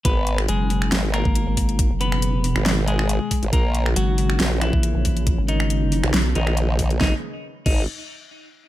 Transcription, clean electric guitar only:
X:1
M:4/4
L:1/8
Q:"Swing 16ths" 1/4=138
K:G#m
V:1 name="Clean electric guitar"
[B,B]2 [G,G]3 [A,A]3- | [A,A] [B,B]4 [G,G]3 | [A,A]2 [F,F]3 [E,E]3- | [E,E] [D,D]4 [D,D]3 |
D z2 D z4 |]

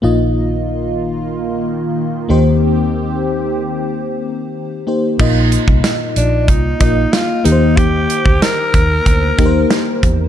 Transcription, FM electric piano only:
X:1
M:4/4
L:1/8
Q:1/4=93
K:Eb
V:1 name="FM electric piano"
[B,EFe]6- [B,EFe] [B,EGc]- | [B,EGc]6- [B,EGc] [B,EGc] | [B,EFe]3 z2 [B,EFe]2 [B,EGBc]- | [B,EGBc]2 z3 [B,EGBc]2 z |]
V:2 name="FM electric piano" clef=bass
B,,3 z4 E,- | E,2 z6 | B,,3 z4 E,- | E,2 z6 |]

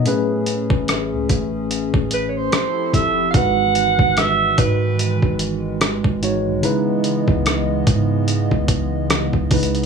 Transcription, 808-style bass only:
X:1
M:4/4
L:1/16
Q:"Swing 16ths" 1/4=73
K:Elyd
V:1 name="808-style bass" clef=bass
z3 =A,,,2 C,, A,,,3 A,,,3 z2 =F,,,2 | G,,,3 G,,,3 G,,3 G,,,4 G,,,2 B,,, | z3 C,,3 G,,3 C,,4 C,,3 |]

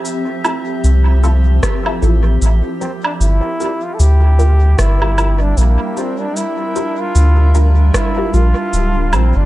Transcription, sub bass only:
X:1
M:4/4
L:1/16
Q:"Swing 16ths" 1/4=76
K:Gdor
V:1 name="Sub bass" clef=bass
z4 C,,4 z2 A,,,2 A,,, z3 | G,,, z3 D,,4 G,,,4 B,,, z3 | z4 D,,4 z2 B,,, z D,,,2 B,,, G,,, |]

